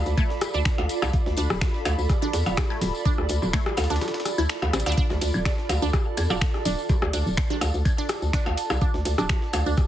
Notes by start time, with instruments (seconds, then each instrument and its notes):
Already playing: ambient pad F4 A4 D5 B5
0.06 fm bass D2, closed hi-hat, tambourine
0.17 synth arpeggio sound A3, kick, closed hi-hat, tambourine, claves
0.30 snare
0.41 cross-stick, closed hi-hat, open hi-hat, tambourine, percussion blips
0.54 fm bass D2, synth arpeggio sound D4, tambourine
0.65 finger snap, kick, snare, closed hi-hat, tambourine
0.78 fm bass D2, closed hi-hat, percussion blips
0.89 closed hi-hat, open hi-hat, tambourine
1.02 fm bass C2, synth arpeggio sound A3, cross-stick, snare, tambourine, percussion blips, claves
1.13 kick, closed hi-hat
1.26 fm bass D2, snare
1.37 fm bass D2, synth arpeggio sound D4, closed hi-hat, open hi-hat, tambourine
1.50 fm bass D1, cross-stick, tambourine
1.61 finger snap, kick, snare, closed hi-hat, tambourine, percussion blips
1.74 snare
1.85 fm bass D2, synth arpeggio sound A3, closed hi-hat, open hi-hat, tambourine, percussion blips, claves
1.98 fm bass D2, tambourine
2.09 kick, cross-stick, closed hi-hat, tambourine
2.22 synth arpeggio sound D4, percussion blips
2.33 fm bass E2, snare, closed hi-hat, open hi-hat, tambourine
2.46 fm bass D1, closed hi-hat, tambourine, percussion blips
2.57 finger snap, kick, cross-stick, snare, closed hi-hat, tambourine
2.70 synth arpeggio sound A3, snare, claves
2.81 fm bass D1, open hi-hat, tambourine, percussion blips
2.95 tambourine
3.05 synth arpeggio sound D4, kick, closed hi-hat, tambourine
3.18 fm bass D2, cross-stick
3.29 fm bass D2, closed hi-hat, open hi-hat, tambourine
3.42 fm bass D1, tambourine, percussion blips
3.53 synth arpeggio sound A3, finger snap, kick, snare, closed hi-hat, claves
3.66 cross-stick, closed hi-hat
3.77 fm bass D2, snare, closed hi-hat, open hi-hat, tambourine, percussion blips
3.84 snare, closed hi-hat
3.90 fm bass D2, synth arpeggio sound D4, snare, closed hi-hat, tambourine
3.96 snare, closed hi-hat
4.01 snare, closed hi-hat, tambourine, percussion blips
4.08 snare, closed hi-hat
4.14 snare, closed hi-hat
4.20 snare, closed hi-hat
4.25 cross-stick, closed hi-hat, open hi-hat, tambourine
4.38 fm bass D2, synth arpeggio sound E4, tambourine, claves
4.49 synth arpeggio sound A4, finger snap, snare, closed hi-hat, tambourine
4.62 fm bass D2, closed hi-hat, percussion blips
4.73 fm bass A1, synth arpeggio sound C4, cross-stick, closed hi-hat, tambourine
4.80 closed hi-hat
4.86 fm bass D2, synth arpeggio sound D4, snare, closed hi-hat, tambourine, percussion blips
4.92 closed hi-hat
4.97 synth arpeggio sound D4, kick, closed hi-hat, tambourine
5.10 fm bass D2, snare, percussion blips
5.21 fm bass D2, closed hi-hat, open hi-hat, ride, tambourine
5.26 ambient pad A5
5.34 fm bass D1, tambourine, claves
5.45 synth arpeggio sound D4, finger snap, kick, cross-stick, snare, closed hi-hat, tambourine
5.58 snare
5.69 fm bass D2, closed hi-hat, open hi-hat, ride, tambourine, percussion blips
5.82 fm bass D2, synth arpeggio sound D4, tambourine
5.93 kick, cross-stick, closed hi-hat, tambourine
6.17 fm bass E2, closed hi-hat, open hi-hat, ride, tambourine, claves
6.30 fm bass D1, synth arpeggio sound D4, closed hi-hat, tambourine, percussion blips
6.41 finger snap, kick, snare, closed hi-hat
6.54 cross-stick, snare
6.65 fm bass D1, synth arpeggio sound D4, open hi-hat, ride, tambourine
6.78 tambourine
6.89 kick, closed hi-hat, tambourine, percussion blips
7.02 fm bass D2, cross-stick, claves
7.13 fm bass D2, synth arpeggio sound D4, closed hi-hat, open hi-hat, ride, tambourine
7.26 fm bass D1, tambourine
7.37 finger snap, kick, snare, closed hi-hat
7.50 synth arpeggio sound D4, closed hi-hat, percussion blips
7.61 fm bass D2, cross-stick, closed hi-hat, open hi-hat, ride, tambourine, percussion blips
7.74 fm bass D2, closed hi-hat, tambourine
7.85 kick, closed hi-hat, tambourine, claves
7.98 synth arpeggio sound D4, snare
8.09 cross-stick, closed hi-hat, open hi-hat, ride, tambourine, percussion blips
8.22 fm bass D2, tambourine
8.33 synth arpeggio sound D4, finger snap, kick, snare, closed hi-hat, tambourine
8.46 fm bass D2, closed hi-hat, percussion blips
8.57 closed hi-hat, open hi-hat, ride, tambourine
8.70 fm bass C2, cross-stick, snare, tambourine, percussion blips, claves
8.81 synth arpeggio sound D4, kick, closed hi-hat, tambourine
8.94 fm bass D2, snare
9.05 fm bass D2, closed hi-hat, open hi-hat, ride, tambourine
9.18 fm bass D1, synth arpeggio sound D4, cross-stick, tambourine
9.29 finger snap, kick, snare, closed hi-hat, percussion blips
9.42 snare
9.53 fm bass D2, closed hi-hat, open hi-hat, ride, tambourine, percussion blips, claves
9.66 fm bass D2, synth arpeggio sound D4, tambourine
9.77 kick, cross-stick, closed hi-hat, tambourine